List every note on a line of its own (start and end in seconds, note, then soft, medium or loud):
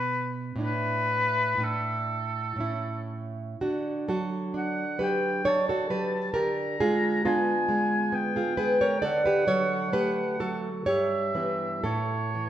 0.00 0.54 B2 medium
0.00 0.56 B3 soft
0.00 0.57 D4 soft
0.00 0.32 B4 medium
0.56 1.56 A2 medium
0.56 1.58 D4 soft
0.60 1.59 E4 soft
0.60 1.65 B4 medium
1.58 2.55 A2 medium
1.58 2.58 D4 soft
1.62 2.59 E4 soft
1.62 3.12 A4 medium
2.56 3.55 A2 medium
2.56 3.56 C#4 soft
2.60 3.57 E4 soft
3.61 6.30 D3 medium
3.61 4.06 D4 soft
3.61 4.06 F#4 medium
4.08 4.83 F#3 soft
4.08 4.97 F#4 medium
4.08 4.97 A4 medium
4.54 5.27 D4 soft
4.54 4.99 F#5 medium
4.98 5.71 F#3 soft
4.98 5.43 G4 medium
4.98 5.43 B4 medium
5.03 5.49 G5 medium
5.45 6.16 D4 soft
5.45 5.67 A4 medium
5.45 5.68 C#5 medium
5.45 6.35 A5 medium
5.69 5.90 F#4 soft
5.69 5.90 A4 medium
5.90 6.33 F#3 soft
5.90 6.32 G4 medium
5.90 6.33 B4 medium
6.34 9.00 D3 medium
6.34 6.77 G4 medium
6.34 6.77 A#4 medium
6.34 7.28 A#5 medium
6.80 7.53 G#3 soft
6.80 7.23 F4 medium
6.80 7.24 G#4 medium
7.25 7.97 B3 soft
7.25 8.34 D4 medium
7.25 8.33 F4 medium
7.25 8.16 G#5 medium
7.69 8.41 G#3 medium
8.12 8.85 B3 medium
8.12 9.04 G5 medium
8.36 8.58 F4 medium
8.36 8.57 G#4 medium
8.57 9.03 G#3 soft
8.57 8.80 G#4 medium
8.57 8.81 B4 medium
8.81 9.03 A#4 medium
8.81 9.02 C#5 medium
9.02 10.83 D3 medium
9.02 9.25 A4 medium
9.02 9.25 D5 medium
9.02 10.57 F#5 medium
9.26 9.48 G4 medium
9.26 9.47 B4 medium
9.47 10.21 F#3 medium
9.47 9.91 A4 medium
9.47 9.92 C#5 medium
9.93 10.69 A3 soft
9.93 10.38 G4 medium
9.93 10.39 B4 medium
10.39 10.88 F#3 soft
10.39 10.85 F#4 medium
10.39 10.86 A4 medium
10.86 11.82 G2 medium
10.86 11.33 G4 medium
10.86 11.34 C#5 medium
10.86 11.83 E5 medium
11.35 11.81 E3 soft
11.35 11.82 B3 soft
11.35 11.83 G4 soft
11.35 11.83 B4 medium
11.84 12.49 A2 soft
11.84 12.49 E4 medium
11.84 12.49 A4 medium
11.84 12.49 C#5 medium
12.35 12.49 E3 soft